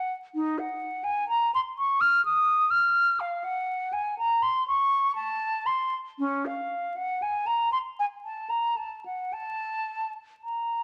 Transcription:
0, 0, Header, 1, 2, 480
1, 0, Start_track
1, 0, Key_signature, -5, "minor"
1, 0, Tempo, 960000
1, 174, Time_signature, 3, 2, 24, 8
1, 2577, Tempo, 1029160
1, 4017, Tempo, 1098901
1, 5149, End_track
2, 0, Start_track
2, 0, Title_t, "Flute"
2, 0, Program_c, 0, 73
2, 0, Note_on_c, 0, 78, 79
2, 66, Note_off_c, 0, 78, 0
2, 175, Note_on_c, 0, 63, 87
2, 294, Note_on_c, 0, 78, 67
2, 301, Note_off_c, 0, 63, 0
2, 520, Note_on_c, 0, 80, 77
2, 527, Note_off_c, 0, 78, 0
2, 640, Note_off_c, 0, 80, 0
2, 643, Note_on_c, 0, 82, 87
2, 764, Note_off_c, 0, 82, 0
2, 772, Note_on_c, 0, 84, 88
2, 802, Note_off_c, 0, 84, 0
2, 891, Note_on_c, 0, 85, 88
2, 1003, Note_on_c, 0, 89, 99
2, 1011, Note_off_c, 0, 85, 0
2, 1122, Note_off_c, 0, 89, 0
2, 1126, Note_on_c, 0, 87, 99
2, 1353, Note_on_c, 0, 89, 87
2, 1360, Note_off_c, 0, 87, 0
2, 1600, Note_on_c, 0, 77, 83
2, 1608, Note_off_c, 0, 89, 0
2, 1721, Note_on_c, 0, 78, 83
2, 1728, Note_off_c, 0, 77, 0
2, 1964, Note_on_c, 0, 80, 84
2, 1971, Note_off_c, 0, 78, 0
2, 2087, Note_off_c, 0, 80, 0
2, 2093, Note_on_c, 0, 82, 93
2, 2212, Note_on_c, 0, 84, 86
2, 2220, Note_off_c, 0, 82, 0
2, 2332, Note_off_c, 0, 84, 0
2, 2339, Note_on_c, 0, 85, 97
2, 2574, Note_off_c, 0, 85, 0
2, 2577, Note_on_c, 0, 81, 98
2, 2814, Note_on_c, 0, 84, 92
2, 2821, Note_off_c, 0, 81, 0
2, 2949, Note_off_c, 0, 84, 0
2, 3060, Note_on_c, 0, 61, 96
2, 3185, Note_on_c, 0, 77, 72
2, 3192, Note_off_c, 0, 61, 0
2, 3420, Note_on_c, 0, 78, 79
2, 3427, Note_off_c, 0, 77, 0
2, 3542, Note_on_c, 0, 80, 82
2, 3549, Note_off_c, 0, 78, 0
2, 3655, Note_on_c, 0, 82, 80
2, 3662, Note_off_c, 0, 80, 0
2, 3772, Note_off_c, 0, 82, 0
2, 3775, Note_on_c, 0, 84, 81
2, 3803, Note_off_c, 0, 84, 0
2, 3901, Note_on_c, 0, 80, 82
2, 3929, Note_off_c, 0, 80, 0
2, 4020, Note_on_c, 0, 81, 69
2, 4128, Note_on_c, 0, 82, 73
2, 4135, Note_off_c, 0, 81, 0
2, 4246, Note_on_c, 0, 81, 67
2, 4252, Note_off_c, 0, 82, 0
2, 4365, Note_off_c, 0, 81, 0
2, 4373, Note_on_c, 0, 78, 72
2, 4492, Note_on_c, 0, 81, 93
2, 4499, Note_off_c, 0, 78, 0
2, 4839, Note_off_c, 0, 81, 0
2, 4976, Note_on_c, 0, 82, 66
2, 5149, Note_off_c, 0, 82, 0
2, 5149, End_track
0, 0, End_of_file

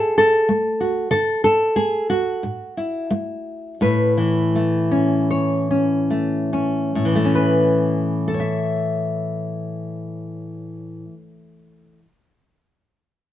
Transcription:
0, 0, Header, 1, 2, 480
1, 0, Start_track
1, 0, Key_signature, 3, "major"
1, 0, Tempo, 643087
1, 836, Time_signature, 4, 2, 24, 8
1, 1319, Tempo, 668896
1, 2279, Tempo, 714286
1, 3239, Tempo, 753769
1, 3719, Tempo, 800000
1, 4199, Tempo, 858369
1, 4679, Tempo, 886263
1, 8135, End_track
2, 0, Start_track
2, 0, Title_t, "Nylon-string guitar"
2, 0, Program_c, 0, 24
2, 0, Note_on_c, 0, 45, 63
2, 0, Note_on_c, 0, 68, 98
2, 0, Note_on_c, 0, 69, 90
2, 120, Note_off_c, 0, 69, 0
2, 132, Note_on_c, 0, 69, 88
2, 308, Note_off_c, 0, 45, 0
2, 363, Note_on_c, 0, 57, 60
2, 366, Note_off_c, 0, 68, 0
2, 601, Note_on_c, 0, 66, 48
2, 791, Note_off_c, 0, 57, 0
2, 809, Note_off_c, 0, 66, 0
2, 817, Note_off_c, 0, 69, 0
2, 826, Note_on_c, 0, 50, 79
2, 827, Note_on_c, 0, 69, 110
2, 1066, Note_off_c, 0, 69, 0
2, 1075, Note_on_c, 0, 69, 92
2, 1266, Note_off_c, 0, 50, 0
2, 1312, Note_on_c, 0, 57, 62
2, 1314, Note_on_c, 0, 68, 93
2, 1551, Note_off_c, 0, 68, 0
2, 1555, Note_on_c, 0, 66, 86
2, 1740, Note_off_c, 0, 57, 0
2, 1790, Note_off_c, 0, 69, 0
2, 1795, Note_on_c, 0, 45, 64
2, 2041, Note_on_c, 0, 64, 44
2, 2231, Note_off_c, 0, 45, 0
2, 2279, Note_on_c, 0, 57, 63
2, 2704, Note_off_c, 0, 57, 0
2, 2727, Note_off_c, 0, 64, 0
2, 2752, Note_on_c, 0, 45, 66
2, 2753, Note_off_c, 0, 66, 0
2, 2758, Note_on_c, 0, 71, 68
2, 2997, Note_on_c, 0, 52, 55
2, 3252, Note_on_c, 0, 57, 48
2, 3481, Note_on_c, 0, 61, 51
2, 3722, Note_off_c, 0, 71, 0
2, 3730, Note_on_c, 0, 73, 54
2, 3957, Note_off_c, 0, 61, 0
2, 3970, Note_on_c, 0, 61, 48
2, 4201, Note_off_c, 0, 57, 0
2, 4208, Note_on_c, 0, 57, 46
2, 4440, Note_off_c, 0, 61, 0
2, 4446, Note_on_c, 0, 61, 49
2, 4654, Note_off_c, 0, 73, 0
2, 4677, Note_off_c, 0, 45, 0
2, 4683, Note_on_c, 0, 45, 52
2, 4729, Note_off_c, 0, 52, 0
2, 4736, Note_on_c, 0, 52, 51
2, 4784, Note_off_c, 0, 57, 0
2, 4791, Note_on_c, 0, 57, 49
2, 4837, Note_off_c, 0, 61, 0
2, 4844, Note_on_c, 0, 61, 48
2, 4898, Note_on_c, 0, 71, 46
2, 5398, Note_off_c, 0, 57, 0
2, 5400, Note_on_c, 0, 69, 53
2, 5433, Note_off_c, 0, 61, 0
2, 5435, Note_on_c, 0, 73, 50
2, 5463, Note_off_c, 0, 71, 0
2, 5465, Note_on_c, 0, 76, 53
2, 6896, Note_off_c, 0, 45, 0
2, 6949, Note_off_c, 0, 52, 0
2, 7412, Note_off_c, 0, 69, 0
2, 7429, Note_off_c, 0, 73, 0
2, 7444, Note_off_c, 0, 76, 0
2, 8135, End_track
0, 0, End_of_file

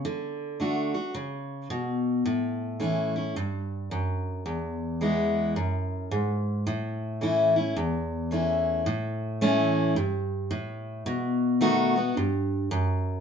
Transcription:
0, 0, Header, 1, 2, 480
1, 0, Start_track
1, 0, Tempo, 550459
1, 44, Time_signature, 4, 2, 24, 8
1, 11513, End_track
2, 0, Start_track
2, 0, Title_t, "Steel-string acoustic guitar"
2, 0, Program_c, 0, 25
2, 42, Note_on_c, 0, 50, 82
2, 510, Note_off_c, 0, 50, 0
2, 520, Note_on_c, 0, 50, 58
2, 527, Note_on_c, 0, 57, 55
2, 530, Note_on_c, 0, 62, 68
2, 536, Note_on_c, 0, 66, 66
2, 812, Note_off_c, 0, 66, 0
2, 818, Note_off_c, 0, 50, 0
2, 822, Note_off_c, 0, 57, 0
2, 823, Note_off_c, 0, 62, 0
2, 823, Note_on_c, 0, 66, 54
2, 838, Note_on_c, 0, 62, 43
2, 994, Note_off_c, 0, 66, 0
2, 998, Note_on_c, 0, 49, 78
2, 1001, Note_off_c, 0, 62, 0
2, 1466, Note_off_c, 0, 49, 0
2, 1484, Note_on_c, 0, 47, 76
2, 1949, Note_off_c, 0, 47, 0
2, 1966, Note_on_c, 0, 45, 81
2, 2438, Note_on_c, 0, 52, 58
2, 2443, Note_on_c, 0, 57, 55
2, 2447, Note_on_c, 0, 61, 63
2, 2458, Note_on_c, 0, 64, 58
2, 2739, Note_off_c, 0, 52, 0
2, 2742, Note_off_c, 0, 57, 0
2, 2743, Note_off_c, 0, 64, 0
2, 2744, Note_off_c, 0, 61, 0
2, 2753, Note_on_c, 0, 64, 54
2, 2771, Note_on_c, 0, 61, 43
2, 2895, Note_off_c, 0, 45, 0
2, 2921, Note_off_c, 0, 64, 0
2, 2930, Note_off_c, 0, 61, 0
2, 2933, Note_on_c, 0, 43, 84
2, 3395, Note_off_c, 0, 43, 0
2, 3412, Note_on_c, 0, 42, 80
2, 3875, Note_off_c, 0, 42, 0
2, 3886, Note_on_c, 0, 40, 82
2, 4367, Note_on_c, 0, 52, 59
2, 4372, Note_on_c, 0, 56, 65
2, 4377, Note_on_c, 0, 59, 59
2, 4382, Note_on_c, 0, 64, 68
2, 4816, Note_off_c, 0, 40, 0
2, 4833, Note_off_c, 0, 52, 0
2, 4836, Note_off_c, 0, 56, 0
2, 4838, Note_off_c, 0, 59, 0
2, 4841, Note_off_c, 0, 64, 0
2, 4850, Note_on_c, 0, 42, 83
2, 5315, Note_off_c, 0, 42, 0
2, 5331, Note_on_c, 0, 44, 78
2, 5796, Note_off_c, 0, 44, 0
2, 5813, Note_on_c, 0, 45, 84
2, 6288, Note_on_c, 0, 52, 56
2, 6291, Note_on_c, 0, 57, 58
2, 6298, Note_on_c, 0, 61, 54
2, 6305, Note_on_c, 0, 64, 67
2, 6582, Note_off_c, 0, 64, 0
2, 6586, Note_off_c, 0, 52, 0
2, 6588, Note_off_c, 0, 57, 0
2, 6592, Note_off_c, 0, 61, 0
2, 6592, Note_on_c, 0, 64, 56
2, 6610, Note_on_c, 0, 61, 45
2, 6739, Note_off_c, 0, 45, 0
2, 6763, Note_off_c, 0, 64, 0
2, 6771, Note_on_c, 0, 40, 83
2, 6772, Note_off_c, 0, 61, 0
2, 7245, Note_on_c, 0, 52, 50
2, 7252, Note_on_c, 0, 57, 55
2, 7255, Note_on_c, 0, 61, 60
2, 7263, Note_on_c, 0, 64, 56
2, 7698, Note_off_c, 0, 40, 0
2, 7712, Note_off_c, 0, 52, 0
2, 7716, Note_off_c, 0, 57, 0
2, 7717, Note_off_c, 0, 61, 0
2, 7721, Note_off_c, 0, 64, 0
2, 7727, Note_on_c, 0, 45, 94
2, 8208, Note_on_c, 0, 52, 85
2, 8212, Note_on_c, 0, 57, 96
2, 8216, Note_on_c, 0, 61, 102
2, 8221, Note_on_c, 0, 64, 101
2, 8655, Note_off_c, 0, 45, 0
2, 8673, Note_off_c, 0, 52, 0
2, 8675, Note_off_c, 0, 57, 0
2, 8676, Note_off_c, 0, 61, 0
2, 8679, Note_off_c, 0, 64, 0
2, 8687, Note_on_c, 0, 43, 86
2, 9152, Note_off_c, 0, 43, 0
2, 9161, Note_on_c, 0, 45, 88
2, 9628, Note_off_c, 0, 45, 0
2, 9644, Note_on_c, 0, 47, 91
2, 10121, Note_on_c, 0, 51, 87
2, 10127, Note_on_c, 0, 57, 88
2, 10129, Note_on_c, 0, 59, 88
2, 10132, Note_on_c, 0, 66, 110
2, 10418, Note_off_c, 0, 66, 0
2, 10419, Note_off_c, 0, 51, 0
2, 10422, Note_off_c, 0, 57, 0
2, 10424, Note_off_c, 0, 59, 0
2, 10428, Note_on_c, 0, 66, 60
2, 10441, Note_on_c, 0, 59, 53
2, 10570, Note_off_c, 0, 47, 0
2, 10597, Note_off_c, 0, 66, 0
2, 10603, Note_off_c, 0, 59, 0
2, 10613, Note_on_c, 0, 43, 85
2, 11072, Note_off_c, 0, 43, 0
2, 11084, Note_on_c, 0, 42, 92
2, 11513, Note_off_c, 0, 42, 0
2, 11513, End_track
0, 0, End_of_file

